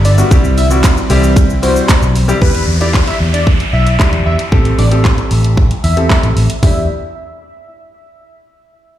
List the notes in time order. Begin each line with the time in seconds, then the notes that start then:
Already playing: G1 D3 G3 B3 E4
0.05 D5, open hi-hat, shaker
0.18 G3 B3 D4 F#4, shaker
0.31 C2 E3 G3 C4 E4 G4, kick, closed hi-hat, shaker
0.44 shaker
0.58 E5, open hi-hat, shaker
0.70 G3 C4 E4 F#4, shaker
0.84 kick, clap, closed hi-hat, shaker
0.97 shaker
1.10 C2 G3 C4 E4 G4, open hi-hat, shaker
1.23 shaker
1.36 kick, closed hi-hat, shaker
1.50 shaker
1.62 G3 C4 E4 F#4 C5, open hi-hat, shaker
1.76 shaker
1.89 kick, clap, closed hi-hat, shaker
2.02 B1, shaker
2.16 open hi-hat, shaker
2.28 G3 C4 E4 G4, shaker
2.41 E2 D4 E4 G4 B4, kick, downlifter
2.55 closed hi-hat
2.68 E2
2.81 D4 E4 G4 D5, closed hi-hat
2.94 kick, clap
3.07 E5, closed hi-hat
3.20 E2
3.34 D5, closed hi-hat
3.47 kick
3.60 closed hi-hat
3.73 B1 E5
3.87 closed hi-hat
3.99 D4 E4 G4, kick, clap
4.13 E2, closed hi-hat
4.26 E2 E5
4.39 closed hi-hat
4.52 A1 C4 G4 A4, kick
4.65 closed hi-hat
4.78 A1 D5, open hi-hat
4.91 C4 G4 A4, closed hi-hat
5.05 kick, clap
5.18 closed hi-hat
5.31 A1, open hi-hat
5.44 closed hi-hat
5.57 kick
5.71 closed hi-hat
5.84 E2 E5, open hi-hat
5.97 C4 G4 A4, closed hi-hat
6.10 kick, clap
6.23 A1, closed hi-hat
6.37 A1, open hi-hat
6.50 closed hi-hat
6.63 E2 D4 E4 G4 E5, kick, floor tom, open hi-hat